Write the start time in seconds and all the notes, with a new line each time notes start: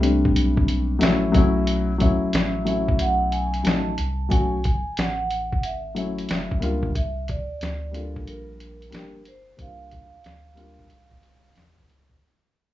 Already playing: C2
0.00 G3 A3 C4 D4, closed hi-hat
0.25 kick
0.35 B1, closed hi-hat
0.57 kick
0.68 closed hi-hat
0.99 A1 F#3 A3 C#4 E4, closed hi-hat
1.03 snare
1.32 B1 F#3 A3 C#4 E4, kick, closed hi-hat
1.67 closed hi-hat
1.98 F#3 A3 C#4 E4, kick, closed hi-hat
2.22 A1
2.33 A1 E5, snare, closed hi-hat
2.65 F#3 A3 C#4 E4, closed hi-hat
2.88 kick
2.99 B1 F#5, closed hi-hat
3.32 G#5, closed hi-hat
3.54 closed hi-hat
3.63 A1 F#3 A3 C#4 D#4 A5, snare, closed hi-hat
3.98 C2, closed hi-hat
4.29 B1 F#3 A3 C#4 F#4 G#5, kick, closed hi-hat
4.64 kick, closed hi-hat
4.87 A1
4.97 A1 F#5, snare, closed hi-hat
5.31 closed hi-hat
5.53 kick
5.63 G#1 E5, closed hi-hat
5.95 F#3 A3 C#4 E4, closed hi-hat
6.18 closed hi-hat
6.29 F#1, snare, closed hi-hat
6.51 kick
6.60 C#2 G3 A#3 D4 F4, closed hi-hat
6.83 kick
6.95 C2 E5, kick, closed hi-hat
7.28 D5, kick, closed hi-hat
7.50 D2
7.60 D2, snare, closed hi-hat
7.91 G3 A#3 D4 F4 A4, closed hi-hat
8.16 kick
8.26 A#1 A#4, closed hi-hat
8.60 closed hi-hat
8.82 closed hi-hat
8.91 G1 G3 A#3 D4 G4, snare, closed hi-hat
9.25 C5, closed hi-hat
9.57 C2 G3 A#3 D4 E4, kick, closed hi-hat
9.61 F5
9.67 F4
9.91 kick, closed hi-hat
10.13 D2
10.24 D2, snare, closed hi-hat
10.55 G3 A#3 D4 F4, closed hi-hat
10.79 kick
10.90 C2, closed hi-hat
11.11 kick
11.23 closed hi-hat
11.55 E2, snare, closed hi-hat
11.78 kick
11.89 C#2, closed hi-hat
12.10 kick